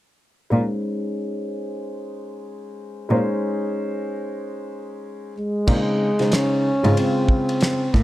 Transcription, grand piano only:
0.50 G#3 C#4 D#4 C5
3.09 G#3 C#4 D#4 C5
5.67 C#3 G#3 C4 D#4
6.20 C#3 G#3 D#4 C5
6.83 C#3 G#3 C4 F4

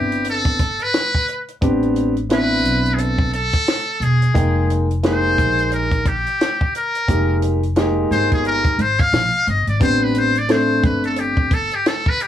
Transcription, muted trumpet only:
Already playing: G4
0.30 A4
0.83 B4
2.32 B4
2.94 G#4
2.99 A4
3.34 A4
4.03 G#4
5.05 C5
5.73 A#4
6.08 G4
6.77 A#4
8.12 C5
8.33 G#4
8.47 A#4
8.81 C5
9.01 F5
9.49 D#5
9.69 D5
9.83 C5
10.03 B4
10.19 C5
10.38 D5
10.52 C5
10.85 B4
11.05 A4
11.19 G4
11.54 A4
11.75 G4
11.88 A4
12.09 B4
12.22 G4

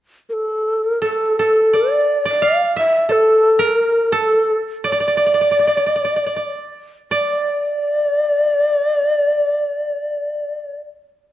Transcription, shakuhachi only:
0.29 A4 A#4
0.84 A#4
1.04 A4
1.40 A4
1.76 D5
2.29 D5
2.43 F5
2.78 E5
3.12 A4
3.63 A4
3.74 A#4
4.13 A4
4.86 D5
7.12 D5

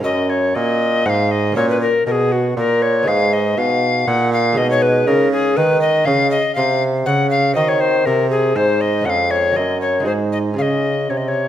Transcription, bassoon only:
0.04 F#2
0.55 A#2
1.06 G#2
1.56 A#2
2.06 B2
2.57 A#2
3.07 G#2
3.57 B2
4.07 A#2
4.57 B2
5.07 C#3
5.57 D#3
6.07 C#3
6.57 C3
7.07 C#3
7.56 D#3
8.06 C3
8.56 G#2
9.06 F2
9.56 F#2
10.06 G#2
10.58 C#3
11.10 C3

